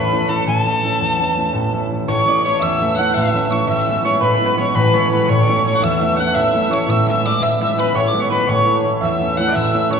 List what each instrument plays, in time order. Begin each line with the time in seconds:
Already playing: harp A1 A2 A3 B3 C#4 E4, mandolin B4, fiddle B4, tin whistle B5
0.12 harp A3 C#4 E4
0.28 harp A3 C#4 E4, fiddle A4, mandolin A4, tin whistle A5
0.47 harp A1 A2, mandolin A4, fiddle A4, tin whistle G#5
0.60 tin whistle A5
0.66 harp A3 C#4 E4
0.84 harp A3 C#4 E4
1.00 harp E2
1.20 harp A3 C#4 E4
1.37 harp A3 C#4 E4
1.53 harp A1 A2
1.73 harp A3 C#4 E4
1.90 harp A3 C#4 E4
2.08 harp A1 A2, mandolin C#5, fiddle C#5, tin whistle C#6
2.25 harp A3 C#4 E4, mandolin D5
2.43 harp A3 C#4 E4, fiddle C#5, mandolin C#5, tin whistle C#6
2.59 harp E2, fiddle E5, mandolin E5, tin whistle E6
2.81 harp A3 C#4 E4
2.95 harp A3, fiddle F#5, mandolin F#5, tin whistle F#6
2.99 harp C#4 E4
3.08 tin whistle F#6
3.14 harp A1 A2, mandolin E5, fiddle E5, tin whistle E6
3.34 harp A3 C#4 E4
3.50 harp A3 C#4 E4, mandolin C#5, tin whistle C#6
3.67 harp A1 A2, mandolin E5, fiddle E5, tin whistle E6
3.88 harp G#3 B3 E4
4.04 harp G#3 B3 E4, mandolin C#5, fiddle C#5, tin whistle C#6
4.21 harp A2, mandolin B4, fiddle B4, tin whistle B5
4.34 mandolin B4
4.40 harp G#3 B3 E4, fiddle B4
4.46 mandolin B4
4.58 harp G#3 B3 E4, mandolin C#5, fiddle C#5, tin whistle C#6
4.74 harp A1 A2, mandolin B4, fiddle B4, tin whistle B5
4.93 harp G#3 B3, mandolin C#5
4.97 harp E4
5.12 harp G#3 B3 E4, fiddle B4, tin whistle B5
5.28 harp A1 A2, mandolin C#5, fiddle C#5, tin whistle C#6
5.42 fiddle D5
5.48 harp A3 C#4 E4
5.54 fiddle C#5
5.64 harp A3 C#4 E4, mandolin C#5, fiddle C#5, tin whistle C#6
5.75 fiddle F#5
5.82 harp E2, mandolin E5, fiddle E5, tin whistle E6
6.01 harp A3 C#4 E4, mandolin E5
6.16 harp A3 C#4 E4, mandolin F#5, fiddle F#5, tin whistle F#6
6.27 mandolin F#5
6.34 harp A1 A2, mandolin E5, fiddle E5, tin whistle E6
6.54 harp A3 C#4 E4
6.71 harp A3 C#4 E4, mandolin C#5, fiddle C#5, tin whistle C#6
6.88 harp A1 A2, fiddle E5, mandolin E5, tin whistle E6
7.06 harp G#3 B3, fiddle E5, mandolin E5, tin whistle E6
7.11 harp E4
7.25 harp G#3 B3 E4, mandolin D5, tin whistle D6
7.41 harp A2, fiddle E5, mandolin E5, tin whistle E6
7.61 harp G#3 B3 E4, fiddle E5, mandolin E5, tin whistle E6
7.77 harp G#3 B3 E4, mandolin B4, fiddle B4, tin whistle B5
7.94 harp A1 A2, mandolin C#5, fiddle C#5, tin whistle C#6
8.08 tin whistle D6
8.14 harp G#3 B3 E4
8.20 mandolin C#5, fiddle C#5, tin whistle C#6
8.25 tin whistle C#6
8.29 harp G#3 B3 E4, mandolin B4, fiddle B4 C#5, tin whistle B5
8.47 harp A1 A2, mandolin C#5, fiddle C#5, tin whistle C#6
8.66 harp A3 C#4 E4
8.85 harp A3 C#4 E4
9.01 harp E2, mandolin E5, fiddle E5, tin whistle E6
9.20 harp A3 C#4 E4
9.37 harp A3 C#4 E4, mandolin F#5, fiddle F#5, tin whistle F#6
9.48 fiddle D5, mandolin E5
9.54 harp A1 A2, fiddle E5, tin whistle E6
9.74 harp A3 C#4 E4
9.90 harp A3 C#4 E4, fiddle C#5, mandolin C#5, tin whistle C#6